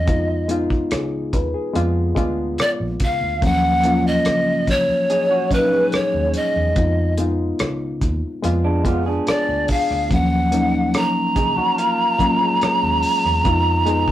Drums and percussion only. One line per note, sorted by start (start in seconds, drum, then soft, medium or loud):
0.07 kick loud
0.07 closed hi-hat medium
0.49 closed hi-hat medium
0.70 kick medium
0.91 cross-stick medium
0.91 closed hi-hat medium
1.33 kick medium
1.33 closed hi-hat medium
1.75 closed hi-hat medium
2.16 kick medium
2.16 closed hi-hat medium
2.58 cross-stick loud
2.58 closed hi-hat medium
3.00 kick medium
3.00 closed hi-hat medium
3.42 kick loud
3.42 closed hi-hat medium
3.84 closed hi-hat medium
4.25 cross-stick loud
4.25 closed hi-hat medium
4.67 kick medium
4.67 closed hi-hat medium
5.10 closed hi-hat medium
5.51 kick medium
5.51 closed hi-hat medium
5.92 cross-stick loud
5.92 closed hi-hat medium
6.34 closed hi-hat medium
6.76 kick loud
6.76 closed hi-hat medium
7.18 closed hi-hat medium
7.59 cross-stick loud
7.59 closed hi-hat medium
8.01 kick medium
8.01 closed hi-hat medium
8.44 closed hi-hat medium
8.85 kick medium
8.85 closed hi-hat medium
9.27 cross-stick loud
9.27 closed hi-hat medium
9.68 kick medium
9.68 open hi-hat medium
9.91 cross-stick soft
10.11 kick medium
10.11 closed hi-hat medium
10.52 closed hi-hat medium
10.94 cross-stick loud
10.94 closed hi-hat medium
11.36 kick medium
11.36 closed hi-hat medium
11.78 closed hi-hat medium
12.19 kick medium
12.19 closed hi-hat medium
12.61 cross-stick loud
12.61 closed hi-hat medium
13.03 open hi-hat medium
13.25 cross-stick soft
13.45 kick loud
13.45 closed hi-hat medium
13.86 closed hi-hat medium
14.08 kick medium